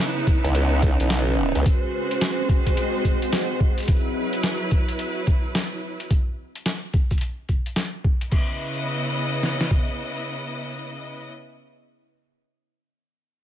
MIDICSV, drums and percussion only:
0, 0, Header, 1, 2, 480
1, 0, Start_track
1, 0, Tempo, 555556
1, 1430, Time_signature, 4, 2, 24, 8
1, 11610, End_track
2, 0, Start_track
2, 0, Title_t, "Drums"
2, 234, Note_on_c, 9, 42, 39
2, 235, Note_on_c, 9, 36, 102
2, 320, Note_off_c, 9, 42, 0
2, 321, Note_off_c, 9, 36, 0
2, 385, Note_on_c, 9, 42, 55
2, 471, Note_off_c, 9, 42, 0
2, 473, Note_on_c, 9, 42, 65
2, 560, Note_off_c, 9, 42, 0
2, 713, Note_on_c, 9, 42, 36
2, 715, Note_on_c, 9, 36, 97
2, 799, Note_off_c, 9, 42, 0
2, 801, Note_off_c, 9, 36, 0
2, 864, Note_on_c, 9, 42, 54
2, 950, Note_off_c, 9, 42, 0
2, 951, Note_on_c, 9, 38, 120
2, 951, Note_on_c, 9, 42, 70
2, 1038, Note_off_c, 9, 38, 0
2, 1038, Note_off_c, 9, 42, 0
2, 1342, Note_on_c, 9, 42, 55
2, 1429, Note_off_c, 9, 42, 0
2, 1433, Note_on_c, 9, 36, 120
2, 1433, Note_on_c, 9, 42, 69
2, 1519, Note_off_c, 9, 42, 0
2, 1520, Note_off_c, 9, 36, 0
2, 1824, Note_on_c, 9, 42, 53
2, 1911, Note_off_c, 9, 42, 0
2, 1913, Note_on_c, 9, 38, 123
2, 1913, Note_on_c, 9, 42, 65
2, 2000, Note_off_c, 9, 38, 0
2, 2000, Note_off_c, 9, 42, 0
2, 2153, Note_on_c, 9, 36, 107
2, 2155, Note_on_c, 9, 42, 38
2, 2239, Note_off_c, 9, 36, 0
2, 2241, Note_off_c, 9, 42, 0
2, 2303, Note_on_c, 9, 36, 60
2, 2304, Note_on_c, 9, 42, 52
2, 2389, Note_off_c, 9, 36, 0
2, 2390, Note_off_c, 9, 42, 0
2, 2394, Note_on_c, 9, 42, 65
2, 2481, Note_off_c, 9, 42, 0
2, 2633, Note_on_c, 9, 36, 59
2, 2636, Note_on_c, 9, 42, 37
2, 2720, Note_off_c, 9, 36, 0
2, 2722, Note_off_c, 9, 42, 0
2, 2785, Note_on_c, 9, 42, 52
2, 2871, Note_off_c, 9, 42, 0
2, 2874, Note_on_c, 9, 38, 120
2, 2874, Note_on_c, 9, 42, 66
2, 2960, Note_off_c, 9, 38, 0
2, 2960, Note_off_c, 9, 42, 0
2, 3114, Note_on_c, 9, 36, 104
2, 3200, Note_off_c, 9, 36, 0
2, 3264, Note_on_c, 9, 42, 50
2, 3285, Note_off_c, 9, 42, 0
2, 3285, Note_on_c, 9, 42, 41
2, 3306, Note_off_c, 9, 42, 0
2, 3306, Note_on_c, 9, 42, 34
2, 3330, Note_off_c, 9, 42, 0
2, 3330, Note_on_c, 9, 42, 27
2, 3351, Note_off_c, 9, 42, 0
2, 3351, Note_on_c, 9, 42, 68
2, 3354, Note_on_c, 9, 36, 120
2, 3426, Note_off_c, 9, 42, 0
2, 3426, Note_on_c, 9, 42, 15
2, 3441, Note_off_c, 9, 36, 0
2, 3463, Note_off_c, 9, 42, 0
2, 3463, Note_on_c, 9, 42, 12
2, 3549, Note_off_c, 9, 42, 0
2, 3741, Note_on_c, 9, 42, 52
2, 3827, Note_off_c, 9, 42, 0
2, 3831, Note_on_c, 9, 38, 117
2, 3831, Note_on_c, 9, 42, 62
2, 3918, Note_off_c, 9, 38, 0
2, 3918, Note_off_c, 9, 42, 0
2, 4071, Note_on_c, 9, 42, 35
2, 4075, Note_on_c, 9, 36, 103
2, 4157, Note_off_c, 9, 42, 0
2, 4161, Note_off_c, 9, 36, 0
2, 4221, Note_on_c, 9, 42, 49
2, 4307, Note_off_c, 9, 42, 0
2, 4312, Note_on_c, 9, 42, 64
2, 4398, Note_off_c, 9, 42, 0
2, 4553, Note_on_c, 9, 42, 36
2, 4556, Note_on_c, 9, 36, 106
2, 4639, Note_off_c, 9, 42, 0
2, 4643, Note_off_c, 9, 36, 0
2, 4795, Note_on_c, 9, 38, 122
2, 4795, Note_on_c, 9, 42, 64
2, 4881, Note_off_c, 9, 38, 0
2, 4881, Note_off_c, 9, 42, 0
2, 5184, Note_on_c, 9, 42, 50
2, 5271, Note_off_c, 9, 42, 0
2, 5275, Note_on_c, 9, 42, 62
2, 5276, Note_on_c, 9, 36, 113
2, 5362, Note_off_c, 9, 36, 0
2, 5362, Note_off_c, 9, 42, 0
2, 5663, Note_on_c, 9, 42, 47
2, 5750, Note_off_c, 9, 42, 0
2, 5753, Note_on_c, 9, 38, 111
2, 5753, Note_on_c, 9, 42, 62
2, 5839, Note_off_c, 9, 38, 0
2, 5839, Note_off_c, 9, 42, 0
2, 5992, Note_on_c, 9, 42, 35
2, 5994, Note_on_c, 9, 36, 99
2, 6078, Note_off_c, 9, 42, 0
2, 6081, Note_off_c, 9, 36, 0
2, 6140, Note_on_c, 9, 42, 21
2, 6144, Note_on_c, 9, 36, 61
2, 6151, Note_off_c, 9, 42, 0
2, 6151, Note_on_c, 9, 42, 29
2, 6202, Note_off_c, 9, 42, 0
2, 6202, Note_on_c, 9, 42, 37
2, 6230, Note_off_c, 9, 36, 0
2, 6231, Note_off_c, 9, 42, 0
2, 6231, Note_on_c, 9, 42, 56
2, 6317, Note_off_c, 9, 42, 0
2, 6468, Note_on_c, 9, 42, 33
2, 6472, Note_on_c, 9, 36, 57
2, 6555, Note_off_c, 9, 42, 0
2, 6558, Note_off_c, 9, 36, 0
2, 6619, Note_on_c, 9, 42, 45
2, 6705, Note_off_c, 9, 42, 0
2, 6706, Note_on_c, 9, 38, 114
2, 6706, Note_on_c, 9, 42, 64
2, 6793, Note_off_c, 9, 38, 0
2, 6793, Note_off_c, 9, 42, 0
2, 6950, Note_on_c, 9, 36, 102
2, 7037, Note_off_c, 9, 36, 0
2, 7096, Note_on_c, 9, 42, 46
2, 7182, Note_off_c, 9, 42, 0
2, 7184, Note_on_c, 9, 49, 80
2, 7189, Note_on_c, 9, 36, 104
2, 7271, Note_off_c, 9, 49, 0
2, 7275, Note_off_c, 9, 36, 0
2, 8149, Note_on_c, 9, 38, 59
2, 8235, Note_off_c, 9, 38, 0
2, 8301, Note_on_c, 9, 38, 67
2, 8387, Note_off_c, 9, 38, 0
2, 8389, Note_on_c, 9, 36, 82
2, 8476, Note_off_c, 9, 36, 0
2, 11610, End_track
0, 0, End_of_file